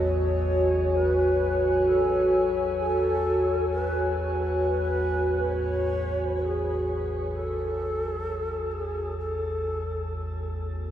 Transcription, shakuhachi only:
0, 0, Header, 1, 2, 480
1, 0, Start_track
1, 0, Tempo, 909091
1, 25, Time_signature, 4, 2, 24, 8
1, 5761, End_track
2, 0, Start_track
2, 0, Title_t, "Shakuhachi"
2, 0, Program_c, 0, 77
2, 24, Note_on_c, 0, 73, 89
2, 510, Note_on_c, 0, 71, 92
2, 517, Note_off_c, 0, 73, 0
2, 989, Note_on_c, 0, 69, 81
2, 997, Note_off_c, 0, 71, 0
2, 1467, Note_off_c, 0, 69, 0
2, 1477, Note_on_c, 0, 69, 88
2, 1930, Note_off_c, 0, 69, 0
2, 1963, Note_on_c, 0, 71, 84
2, 2270, Note_off_c, 0, 71, 0
2, 2428, Note_on_c, 0, 71, 85
2, 2914, Note_on_c, 0, 73, 94
2, 2922, Note_off_c, 0, 71, 0
2, 3405, Note_on_c, 0, 68, 80
2, 3413, Note_off_c, 0, 73, 0
2, 3886, Note_on_c, 0, 69, 83
2, 3894, Note_off_c, 0, 68, 0
2, 4600, Note_on_c, 0, 68, 70
2, 4608, Note_off_c, 0, 69, 0
2, 4833, Note_off_c, 0, 68, 0
2, 4851, Note_on_c, 0, 69, 71
2, 5537, Note_off_c, 0, 69, 0
2, 5761, End_track
0, 0, End_of_file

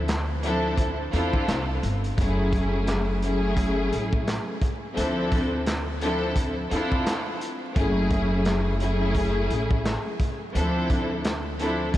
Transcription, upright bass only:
0, 0, Header, 1, 2, 480
1, 0, Start_track
1, 0, Tempo, 697674
1, 1499, Time_signature, 4, 2, 24, 8
1, 8239, End_track
2, 0, Start_track
2, 0, Title_t, "Upright bass"
2, 0, Program_c, 0, 32
2, 0, Note_on_c, 0, 38, 101
2, 751, Note_off_c, 0, 38, 0
2, 779, Note_on_c, 0, 40, 101
2, 970, Note_off_c, 0, 40, 0
2, 1019, Note_on_c, 0, 36, 98
2, 1210, Note_off_c, 0, 36, 0
2, 1259, Note_on_c, 0, 31, 97
2, 1450, Note_off_c, 0, 31, 0
2, 1500, Note_on_c, 0, 30, 100
2, 2672, Note_off_c, 0, 30, 0
2, 2698, Note_on_c, 0, 33, 90
2, 3003, Note_off_c, 0, 33, 0
2, 3419, Note_on_c, 0, 38, 103
2, 4592, Note_off_c, 0, 38, 0
2, 4619, Note_on_c, 0, 40, 98
2, 4810, Note_off_c, 0, 40, 0
2, 5339, Note_on_c, 0, 30, 111
2, 6512, Note_off_c, 0, 30, 0
2, 6538, Note_on_c, 0, 33, 94
2, 6843, Note_off_c, 0, 33, 0
2, 7258, Note_on_c, 0, 38, 104
2, 8191, Note_off_c, 0, 38, 0
2, 8215, Note_on_c, 0, 37, 104
2, 8239, Note_off_c, 0, 37, 0
2, 8239, End_track
0, 0, End_of_file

